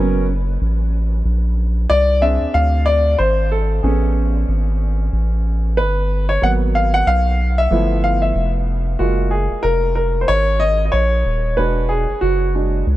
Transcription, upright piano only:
0, 0, Header, 1, 2, 480
1, 0, Start_track
1, 0, Tempo, 645161
1, 931, Time_signature, 4, 2, 24, 8
1, 9649, End_track
2, 0, Start_track
2, 0, Title_t, "Upright piano"
2, 0, Program_c, 0, 0
2, 0, Note_on_c, 0, 54, 52
2, 0, Note_on_c, 0, 56, 46
2, 0, Note_on_c, 0, 58, 51
2, 0, Note_on_c, 0, 59, 51
2, 0, Note_on_c, 0, 61, 59
2, 0, Note_on_c, 0, 70, 82
2, 185, Note_off_c, 0, 70, 0
2, 186, Note_off_c, 0, 54, 0
2, 188, Note_off_c, 0, 58, 0
2, 189, Note_off_c, 0, 59, 0
2, 190, Note_off_c, 0, 61, 0
2, 901, Note_off_c, 0, 56, 0
2, 1411, Note_on_c, 0, 74, 107
2, 1646, Note_on_c, 0, 68, 47
2, 1650, Note_on_c, 0, 60, 46
2, 1652, Note_on_c, 0, 76, 95
2, 1655, Note_on_c, 0, 62, 61
2, 1658, Note_off_c, 0, 74, 0
2, 1891, Note_on_c, 0, 77, 100
2, 1899, Note_off_c, 0, 76, 0
2, 2115, Note_off_c, 0, 77, 0
2, 2125, Note_on_c, 0, 74, 99
2, 2351, Note_off_c, 0, 74, 0
2, 2370, Note_on_c, 0, 72, 94
2, 2594, Note_off_c, 0, 72, 0
2, 2616, Note_on_c, 0, 69, 80
2, 2819, Note_off_c, 0, 68, 0
2, 2821, Note_off_c, 0, 60, 0
2, 2823, Note_off_c, 0, 62, 0
2, 2848, Note_on_c, 0, 68, 50
2, 2853, Note_on_c, 0, 59, 46
2, 2859, Note_on_c, 0, 61, 56
2, 3064, Note_off_c, 0, 69, 0
2, 4295, Note_on_c, 0, 71, 85
2, 4646, Note_off_c, 0, 71, 0
2, 4679, Note_on_c, 0, 73, 91
2, 4740, Note_off_c, 0, 68, 0
2, 4742, Note_off_c, 0, 59, 0
2, 4746, Note_off_c, 0, 61, 0
2, 4769, Note_off_c, 0, 73, 0
2, 4774, Note_on_c, 0, 54, 47
2, 4778, Note_on_c, 0, 58, 50
2, 4782, Note_on_c, 0, 59, 56
2, 4787, Note_on_c, 0, 78, 98
2, 4839, Note_off_c, 0, 78, 0
2, 5023, Note_on_c, 0, 77, 95
2, 5147, Note_off_c, 0, 77, 0
2, 5163, Note_on_c, 0, 78, 110
2, 5261, Note_off_c, 0, 78, 0
2, 5262, Note_on_c, 0, 77, 113
2, 5463, Note_off_c, 0, 54, 0
2, 5465, Note_off_c, 0, 58, 0
2, 5467, Note_off_c, 0, 59, 0
2, 5641, Note_on_c, 0, 76, 103
2, 5647, Note_off_c, 0, 77, 0
2, 5734, Note_on_c, 0, 53, 59
2, 5735, Note_on_c, 0, 57, 54
2, 5740, Note_on_c, 0, 59, 56
2, 5742, Note_on_c, 0, 64, 62
2, 5953, Note_off_c, 0, 76, 0
2, 5980, Note_on_c, 0, 77, 94
2, 6105, Note_off_c, 0, 77, 0
2, 6114, Note_on_c, 0, 76, 83
2, 6336, Note_off_c, 0, 76, 0
2, 6663, Note_off_c, 0, 53, 0
2, 6663, Note_off_c, 0, 57, 0
2, 6666, Note_off_c, 0, 59, 0
2, 6667, Note_off_c, 0, 64, 0
2, 6688, Note_on_c, 0, 56, 52
2, 6689, Note_on_c, 0, 66, 70
2, 6693, Note_on_c, 0, 58, 45
2, 6698, Note_on_c, 0, 65, 51
2, 6925, Note_on_c, 0, 68, 72
2, 6938, Note_off_c, 0, 66, 0
2, 7151, Note_off_c, 0, 68, 0
2, 7162, Note_on_c, 0, 70, 100
2, 7395, Note_off_c, 0, 70, 0
2, 7406, Note_on_c, 0, 70, 78
2, 7598, Note_on_c, 0, 72, 66
2, 7611, Note_off_c, 0, 70, 0
2, 7647, Note_off_c, 0, 72, 0
2, 7649, Note_on_c, 0, 73, 106
2, 7884, Note_on_c, 0, 75, 105
2, 7897, Note_off_c, 0, 73, 0
2, 8064, Note_off_c, 0, 75, 0
2, 8076, Note_on_c, 0, 75, 66
2, 8123, Note_on_c, 0, 73, 95
2, 8126, Note_off_c, 0, 75, 0
2, 8580, Note_off_c, 0, 56, 0
2, 8583, Note_off_c, 0, 58, 0
2, 8585, Note_off_c, 0, 65, 0
2, 8608, Note_on_c, 0, 71, 81
2, 8612, Note_on_c, 0, 56, 50
2, 8617, Note_on_c, 0, 62, 46
2, 8621, Note_on_c, 0, 66, 56
2, 8622, Note_off_c, 0, 73, 0
2, 8845, Note_on_c, 0, 68, 78
2, 8857, Note_off_c, 0, 71, 0
2, 8945, Note_off_c, 0, 56, 0
2, 8948, Note_off_c, 0, 62, 0
2, 8950, Note_off_c, 0, 66, 0
2, 9071, Note_off_c, 0, 68, 0
2, 9085, Note_on_c, 0, 66, 77
2, 9332, Note_off_c, 0, 66, 0
2, 9337, Note_on_c, 0, 56, 41
2, 9339, Note_on_c, 0, 62, 39
2, 9343, Note_on_c, 0, 66, 43
2, 9551, Note_off_c, 0, 56, 0
2, 9552, Note_off_c, 0, 62, 0
2, 9554, Note_off_c, 0, 66, 0
2, 9649, End_track
0, 0, End_of_file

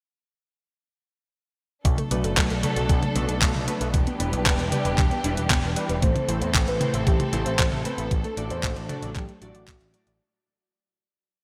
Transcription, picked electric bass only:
0, 0, Header, 1, 2, 480
1, 0, Start_track
1, 0, Tempo, 521739
1, 1702, Time_signature, 4, 2, 24, 8
1, 10521, End_track
2, 0, Start_track
2, 0, Title_t, "Picked electric bass"
2, 0, Program_c, 0, 34
2, 1702, Note_on_c, 0, 35, 97
2, 1809, Note_off_c, 0, 35, 0
2, 1942, Note_on_c, 0, 35, 92
2, 2050, Note_off_c, 0, 35, 0
2, 2063, Note_on_c, 0, 30, 83
2, 2170, Note_off_c, 0, 30, 0
2, 2182, Note_on_c, 0, 35, 107
2, 2290, Note_off_c, 0, 35, 0
2, 2302, Note_on_c, 0, 35, 74
2, 2410, Note_off_c, 0, 35, 0
2, 2543, Note_on_c, 0, 35, 81
2, 2650, Note_off_c, 0, 35, 0
2, 2662, Note_on_c, 0, 35, 96
2, 2770, Note_off_c, 0, 35, 0
2, 2903, Note_on_c, 0, 35, 94
2, 3010, Note_off_c, 0, 35, 0
2, 3023, Note_on_c, 0, 35, 74
2, 3130, Note_off_c, 0, 35, 0
2, 3142, Note_on_c, 0, 35, 98
2, 3249, Note_off_c, 0, 35, 0
2, 3263, Note_on_c, 0, 35, 74
2, 3370, Note_off_c, 0, 35, 0
2, 3503, Note_on_c, 0, 35, 79
2, 3610, Note_off_c, 0, 35, 0
2, 3622, Note_on_c, 0, 28, 96
2, 3730, Note_off_c, 0, 28, 0
2, 3863, Note_on_c, 0, 28, 96
2, 3970, Note_off_c, 0, 28, 0
2, 3983, Note_on_c, 0, 35, 87
2, 4090, Note_off_c, 0, 35, 0
2, 4102, Note_on_c, 0, 28, 105
2, 4210, Note_off_c, 0, 28, 0
2, 4223, Note_on_c, 0, 28, 76
2, 4330, Note_off_c, 0, 28, 0
2, 4462, Note_on_c, 0, 28, 82
2, 4570, Note_off_c, 0, 28, 0
2, 4582, Note_on_c, 0, 28, 101
2, 4690, Note_off_c, 0, 28, 0
2, 4822, Note_on_c, 0, 28, 92
2, 4929, Note_off_c, 0, 28, 0
2, 4942, Note_on_c, 0, 28, 78
2, 5050, Note_off_c, 0, 28, 0
2, 5062, Note_on_c, 0, 28, 97
2, 5170, Note_off_c, 0, 28, 0
2, 5182, Note_on_c, 0, 28, 78
2, 5290, Note_off_c, 0, 28, 0
2, 5422, Note_on_c, 0, 28, 78
2, 5530, Note_off_c, 0, 28, 0
2, 5542, Note_on_c, 0, 33, 96
2, 5649, Note_off_c, 0, 33, 0
2, 5782, Note_on_c, 0, 33, 93
2, 5890, Note_off_c, 0, 33, 0
2, 5902, Note_on_c, 0, 40, 83
2, 6010, Note_off_c, 0, 40, 0
2, 6022, Note_on_c, 0, 33, 104
2, 6130, Note_off_c, 0, 33, 0
2, 6142, Note_on_c, 0, 33, 73
2, 6250, Note_off_c, 0, 33, 0
2, 6382, Note_on_c, 0, 33, 82
2, 6489, Note_off_c, 0, 33, 0
2, 6502, Note_on_c, 0, 33, 100
2, 6610, Note_off_c, 0, 33, 0
2, 6742, Note_on_c, 0, 33, 94
2, 6850, Note_off_c, 0, 33, 0
2, 6863, Note_on_c, 0, 33, 79
2, 6970, Note_off_c, 0, 33, 0
2, 6983, Note_on_c, 0, 33, 95
2, 7090, Note_off_c, 0, 33, 0
2, 7102, Note_on_c, 0, 33, 73
2, 7210, Note_off_c, 0, 33, 0
2, 7343, Note_on_c, 0, 33, 77
2, 7450, Note_off_c, 0, 33, 0
2, 7462, Note_on_c, 0, 33, 98
2, 7569, Note_off_c, 0, 33, 0
2, 7702, Note_on_c, 0, 33, 95
2, 7810, Note_off_c, 0, 33, 0
2, 7822, Note_on_c, 0, 40, 86
2, 7930, Note_off_c, 0, 40, 0
2, 7942, Note_on_c, 0, 33, 102
2, 8050, Note_off_c, 0, 33, 0
2, 8063, Note_on_c, 0, 33, 76
2, 8170, Note_off_c, 0, 33, 0
2, 8303, Note_on_c, 0, 33, 81
2, 8410, Note_off_c, 0, 33, 0
2, 8422, Note_on_c, 0, 33, 101
2, 8529, Note_off_c, 0, 33, 0
2, 8663, Note_on_c, 0, 33, 93
2, 8770, Note_off_c, 0, 33, 0
2, 8783, Note_on_c, 0, 33, 78
2, 8890, Note_off_c, 0, 33, 0
2, 8902, Note_on_c, 0, 33, 98
2, 9009, Note_off_c, 0, 33, 0
2, 9023, Note_on_c, 0, 33, 77
2, 9130, Note_off_c, 0, 33, 0
2, 9263, Note_on_c, 0, 33, 82
2, 9370, Note_off_c, 0, 33, 0
2, 10521, End_track
0, 0, End_of_file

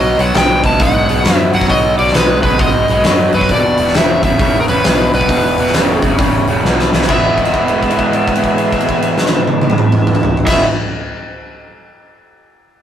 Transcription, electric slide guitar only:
0, 0, Header, 1, 2, 480
1, 0, Start_track
1, 0, Key_signature, 4, "major"
1, 0, Tempo, 449775
1, 1813, Time_signature, 4, 2, 24, 8
1, 13683, End_track
2, 0, Start_track
2, 0, Title_t, "Electric slide guitar"
2, 0, Program_c, 0, 29
2, 0, Note_on_c, 0, 75, 88
2, 221, Note_on_c, 0, 78, 87
2, 222, Note_off_c, 0, 75, 0
2, 389, Note_off_c, 0, 78, 0
2, 401, Note_on_c, 0, 79, 98
2, 698, Note_off_c, 0, 79, 0
2, 702, Note_on_c, 0, 81, 97
2, 870, Note_off_c, 0, 81, 0
2, 870, Note_on_c, 0, 78, 93
2, 1467, Note_off_c, 0, 78, 0
2, 1467, Note_on_c, 0, 76, 93
2, 1639, Note_off_c, 0, 76, 0
2, 1651, Note_on_c, 0, 78, 92
2, 1807, Note_off_c, 0, 78, 0
2, 1818, Note_on_c, 0, 75, 96
2, 2100, Note_off_c, 0, 75, 0
2, 2123, Note_on_c, 0, 74, 82
2, 2293, Note_on_c, 0, 71, 87
2, 2299, Note_off_c, 0, 74, 0
2, 2583, Note_off_c, 0, 71, 0
2, 2596, Note_on_c, 0, 71, 89
2, 2776, Note_off_c, 0, 71, 0
2, 2777, Note_on_c, 0, 75, 86
2, 3569, Note_on_c, 0, 71, 73
2, 3583, Note_off_c, 0, 75, 0
2, 3724, Note_off_c, 0, 71, 0
2, 3751, Note_on_c, 0, 74, 92
2, 4187, Note_off_c, 0, 74, 0
2, 4232, Note_on_c, 0, 76, 87
2, 4519, Note_off_c, 0, 76, 0
2, 4531, Note_on_c, 0, 76, 97
2, 4881, Note_off_c, 0, 76, 0
2, 4912, Note_on_c, 0, 70, 68
2, 5001, Note_off_c, 0, 70, 0
2, 5005, Note_on_c, 0, 71, 82
2, 5478, Note_off_c, 0, 71, 0
2, 5491, Note_on_c, 0, 71, 78
2, 6399, Note_off_c, 0, 71, 0
2, 7579, Note_on_c, 0, 76, 75
2, 11064, Note_off_c, 0, 76, 0
2, 11172, Note_on_c, 0, 76, 77
2, 11343, Note_off_c, 0, 76, 0
2, 13683, End_track
0, 0, End_of_file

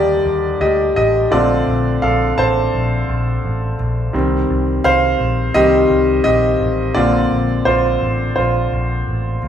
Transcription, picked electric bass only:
0, 0, Header, 1, 2, 480
1, 0, Start_track
1, 0, Key_signature, -2, "major"
1, 0, Tempo, 705882
1, 894, Time_signature, 4, 2, 24, 8
1, 6447, End_track
2, 0, Start_track
2, 0, Title_t, "Picked electric bass"
2, 0, Program_c, 0, 34
2, 0, Note_on_c, 0, 39, 95
2, 130, Note_off_c, 0, 39, 0
2, 174, Note_on_c, 0, 39, 89
2, 371, Note_off_c, 0, 39, 0
2, 414, Note_on_c, 0, 38, 99
2, 611, Note_off_c, 0, 38, 0
2, 654, Note_on_c, 0, 33, 89
2, 851, Note_off_c, 0, 33, 0
2, 897, Note_on_c, 0, 34, 102
2, 1092, Note_off_c, 0, 34, 0
2, 1136, Note_on_c, 0, 34, 104
2, 1332, Note_off_c, 0, 34, 0
2, 1378, Note_on_c, 0, 34, 90
2, 1573, Note_off_c, 0, 34, 0
2, 1618, Note_on_c, 0, 33, 96
2, 1813, Note_off_c, 0, 33, 0
2, 1860, Note_on_c, 0, 34, 88
2, 2054, Note_off_c, 0, 34, 0
2, 2099, Note_on_c, 0, 34, 108
2, 2294, Note_off_c, 0, 34, 0
2, 2340, Note_on_c, 0, 33, 97
2, 2534, Note_off_c, 0, 33, 0
2, 2578, Note_on_c, 0, 34, 109
2, 2773, Note_off_c, 0, 34, 0
2, 2815, Note_on_c, 0, 36, 108
2, 3011, Note_off_c, 0, 36, 0
2, 3059, Note_on_c, 0, 36, 114
2, 3254, Note_off_c, 0, 36, 0
2, 3294, Note_on_c, 0, 36, 83
2, 3491, Note_off_c, 0, 36, 0
2, 3534, Note_on_c, 0, 34, 97
2, 3731, Note_off_c, 0, 34, 0
2, 3771, Note_on_c, 0, 36, 95
2, 3969, Note_off_c, 0, 36, 0
2, 4012, Note_on_c, 0, 36, 102
2, 4210, Note_off_c, 0, 36, 0
2, 4252, Note_on_c, 0, 34, 88
2, 4450, Note_off_c, 0, 34, 0
2, 4492, Note_on_c, 0, 33, 95
2, 4690, Note_off_c, 0, 33, 0
2, 4733, Note_on_c, 0, 34, 105
2, 4930, Note_off_c, 0, 34, 0
2, 4972, Note_on_c, 0, 34, 87
2, 5170, Note_off_c, 0, 34, 0
2, 5212, Note_on_c, 0, 34, 92
2, 5410, Note_off_c, 0, 34, 0
2, 5450, Note_on_c, 0, 33, 87
2, 5648, Note_off_c, 0, 33, 0
2, 5693, Note_on_c, 0, 34, 90
2, 5890, Note_off_c, 0, 34, 0
2, 5932, Note_on_c, 0, 34, 102
2, 6130, Note_off_c, 0, 34, 0
2, 6172, Note_on_c, 0, 33, 80
2, 6370, Note_off_c, 0, 33, 0
2, 6412, Note_on_c, 0, 38, 94
2, 6447, Note_off_c, 0, 38, 0
2, 6447, End_track
0, 0, End_of_file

